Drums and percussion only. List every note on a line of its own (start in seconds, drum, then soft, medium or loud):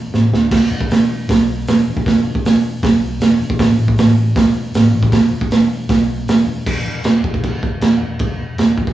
0.14 snare medium
0.34 snare medium
0.51 kick loud
0.51 snare loud
0.51 open hi-hat medium
0.51 crash medium
0.81 kick medium
0.91 snare loud
0.91 open hi-hat medium
1.29 kick loud
1.29 snare loud
1.29 open hi-hat medium
1.67 snare loud
1.67 open hi-hat medium
1.97 kick medium
2.06 kick loud
2.06 snare loud
2.06 open hi-hat medium
2.35 kick medium
2.45 snare loud
2.45 open hi-hat medium
2.83 kick loud
2.83 snare loud
2.83 open hi-hat medium
3.21 snare loud
3.21 open hi-hat medium
3.50 kick medium
3.59 kick loud
3.59 snare loud
3.59 open hi-hat medium
3.88 kick medium
3.98 snare loud
3.98 open hi-hat medium
4.36 kick loud
4.36 snare loud
4.36 open hi-hat medium
4.74 snare loud
4.74 open hi-hat medium
5.03 kick medium
5.12 kick loud
5.12 snare loud
5.12 open hi-hat medium
5.41 kick medium
5.51 snare loud
5.51 open hi-hat medium
5.89 kick loud
5.89 snare loud
5.89 open hi-hat medium
6.28 snare loud
6.28 open hi-hat medium
6.66 kick loud
6.66 crash loud
6.66 crash medium
7.04 snare loud
7.04 crash medium
7.24 kick medium
7.34 kick medium
7.44 kick loud
7.44 crash medium
7.63 kick medium
7.81 snare loud
7.81 crash medium
8.19 kick loud
8.19 crash medium
8.58 snare loud
8.58 crash medium
8.78 kick medium
8.87 kick medium